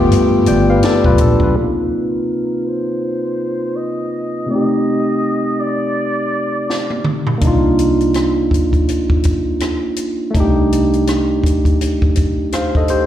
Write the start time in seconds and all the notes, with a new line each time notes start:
Already playing: F3 G3 A3 B3 F4 G4 A4
0.11 G2, closed hi-hat
0.46 G1 D5 G5, closed hi-hat
0.70 B4 F5
0.83 A4 D5, snare, closed hi-hat
1.04 B1 F4 B4, kick
1.18 A#1 D4 A4, kick, closed hi-hat
1.40 B1 F4 B4, kick
1.53 C3 A#3 A#4
1.58 C4 D#4
1.63 F4
2.67 C5
3.76 D#5
4.46 C3 A3 C4
4.51 D#4 D#5
4.55 G4
5.60 D5
6.70 snare
6.90 high tom
7.04 mid tom
7.27 floor tom
7.38 A#3 D4, kick, closed hi-hat
7.43 C2 D#4
7.47 F4
7.79 closed hi-hat
8.00 closed hi-hat
8.14 cross-stick, closed hi-hat
8.51 kick, closed hi-hat
8.73 kick, closed hi-hat
8.88 closed hi-hat
9.10 kick
9.23 kick, closed hi-hat
9.60 cross-stick, closed hi-hat
9.96 closed hi-hat
10.31 A3 D4, kick, closed hi-hat
10.35 C2 D#4
10.40 G4
10.72 closed hi-hat
10.93 closed hi-hat
11.07 cross-stick, closed hi-hat
11.44 kick, closed hi-hat
11.65 kick, closed hi-hat
11.81 closed hi-hat
12.02 kick
12.15 kick, closed hi-hat
12.52 C5 F5, cross-stick, closed hi-hat
12.75 A4 D#5, kick
12.88 G4 C5, closed hi-hat